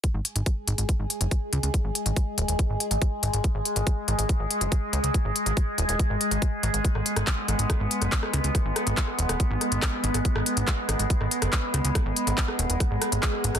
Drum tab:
HH |x-xxx-xxx-xxx-xx|x-xxx-xxx-xxx-xx|x-xxx-xxx-xxx-xx|x-xxx-xxx-xxx-xx|
CP |----------------|----------------|----------------|----------------|
SD |----------------|----------------|----------------|----------------|
BD |o---o---o---o---|o---o---o---o---|o---o---o---o---|o---o---o---o---|

HH |x-xxx-xxx-xxx-xx|x-xxx-xxx-xxx-xx|x-xxx-xxx-xxx-xx|x-xxx-xxx-xxx-xx|
CP |----x-------x---|----x-------x---|----x-------x---|----x-------x---|
SD |-r-r--r-r--r-r--|r-r--r-r--r-r--r|-r--r-r--r-r--r-|r--r-r--r-r--r-r|
BD |o---o---o---o---|o---o---o---o---|o---o---o---o---|o---o---o---o---|